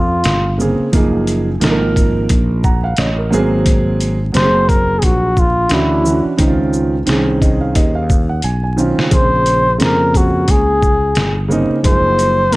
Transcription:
Already playing: F2 F4
0.24 G1, snare, closed hi-hat
0.58 C#3 A#3 C4 G#4, shaker
0.80 muted fretless electric bass stroke
0.92 F#1 F3 A#3 D#4 G#4, kick, closed hi-hat
1.27 closed hi-hat, shaker
1.60 G#1 F3 A#3 D#4 A4, snare, closed hi-hat
1.70 A#4
1.96 kick, closed hi-hat, shaker
2.29 A#1, kick, closed hi-hat
2.64 F#5 A#5, kick, shaker
2.84 F5 F#5
2.97 A1 C#5 D#5, snare, closed hi-hat
3.18 A#4
3.30 G#1 F#3 A#3 B3 G#4 C5, shaker
3.39 C4
3.66 kick, closed hi-hat
4.00 closed hi-hat, shaker
4.32 F#1 F#3 A#3 C4 G4 C5, closed hi-hat
4.37 snare
4.42 G#4
4.69 A#4, kick, closed hi-hat, shaker
4.99 G#4, kick, closed hi-hat
5.03 A#1 F#4
5.37 F4, kick, shaker
5.69 D2 E3 C#4 D4 F#4, snare, closed hi-hat
5.73 E4
6.03 E3 C#4 D4 F#4, shaker
6.25 muted fretless electric bass stroke
6.38 C#2 D#3 C4 C#4 D#4, kick, closed hi-hat
6.47 F4
6.73 shaker
7.06 C2 D#3 C4 C#4 G#4, snare, closed hi-hat
7.41 D#5, kick, closed hi-hat, shaker
7.61 F5
7.75 D#2 D#5, kick, closed hi-hat
7.95 F5
8.10 kick, shaker
8.29 F#5
8.42 B1 G#5, closed hi-hat
8.64 G#5
8.77 D#3 C4 C#4 F4, shaker
8.98 muted fretless electric bass stroke, snare
9.10 A#1 C#3 A#3 C4 G#4 C5, kick, closed hi-hat
9.46 closed hi-hat, shaker
9.78 F2 C#3 A#3 C4 G#4 A#4, closed hi-hat
9.82 snare
10.14 F#4, kick, closed hi-hat, shaker
10.48 C#2 G#4, kick, closed hi-hat
10.82 kick, shaker
11.15 G1, snare, closed hi-hat
11.48 C#3 A#3 C4 D#4, shaker
11.70 muted fretless electric bass stroke
11.82 F#1 F3 G#3 D#4 G#4 C5, kick, closed hi-hat
11.90 A#3
12.19 closed hi-hat, shaker
12.51 A#1 F#3 A#3 D#4, closed hi-hat

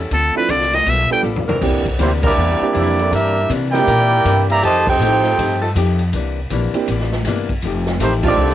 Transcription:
Already playing: E2 G3 C#4 E4 A4
0.11 D2 D3 C4 F4 A4, kick, ride
0.35 F3 C4 D4 E4 A4 B4, muted upright bass stroke
0.48 C2 D3 C4 F4 A4 D5, kick, hi-hat pedal, ride
0.61 snare
0.73 D#5, snare, ride
0.86 B1 G3 B3 F4 A4 E5, kick, ride
1.10 G3 B3 D4 F4 A4 G5
1.23 A1 G3 B3 F4 A4, hi-hat pedal
1.36 floor tom
1.47 E3 C4 D4 A#4, muted upright bass stroke, floor tom
1.61 C2 C3 E3 A#3 C4 D4 E4 G4, kick, crash
1.86 kick, ride
1.98 D2 C3 E3 G3 A#3 C4 D4 E4 G4 C5, kick, hi-hat pedal, ride
2.23 E3 G3 A#3 C4 D4 E4 G4 A#4 D5, kick, crash
2.37 E2 C3 E3 A#3 D4
2.61 A#3 C4 D4 E4 G4, muted upright bass stroke
2.73 F2 C3 E3 A#3 C4 D4 E4, kick, hi-hat pedal, ride
2.99 A#3 C4 D4 E4 A4, ride
3.11 G2 C3 E3 G3 A#3 D4 E4 G4 A#4 E5, kick, ride
3.49 C3 E3 A#3 D4, kick, hi-hat pedal, ride
3.72 A#3 C4 D4 E4 G4 A#4 D5 G5, snare, ride
3.86 A#2 C3 E3 A#3 C4 D4 A#4, kick, ride
3.91 D4
4.25 G2 C3 E3 A#3 D4, kick, hi-hat pedal, ride
4.49 E3 G3 A#3 G4 D5 E5 A#5, ride
4.62 F2 C3 D#3 F3 A3 D#4 G4 C5 D#5 A5, kick, ride
4.87 C4 D#4 G4 A4 C5 G5, kick, crash
4.99 A2 F3 A3 D#4 G4, hi-hat pedal
5.23 A3 C4 D#4 F4 G4, ride
5.38 G2 F3 A3 D#4 G4, kick, ride
5.61 F3 A3 D#4 A4
5.75 F2 F3 A3 D#4 G4, kick, hi-hat pedal, ride
5.99 ride
6.13 C2 C3 E3 A#3 D4, kick, ride
6.50 A#1 C3 E3 A#3 D4, kick, hi-hat pedal, ride
6.74 A#3 C4 D4 E4 G4, muted upright bass stroke, ride
6.87 A1 C3 E3 A#3, kick, ride
6.92 D4
7.00 snare
7.12 snare
7.25 G1 C3 E3 A#3 D4, kick, snare, hi-hat pedal, ride
7.49 kick, ride
7.62 F1 F3 A3 D#4, kick, ride
7.67 G4
7.87 snare
7.99 A1 D#3 F3 A3 C4 D#4 G4 C5, kick, hi-hat pedal, ride
8.23 D#3 G3 A3 C4 D4 D#4 F4 G4 A4 D5, kick, crash
8.27 C4
8.37 C2 F3 A3 D#4 G4
8.50 snare

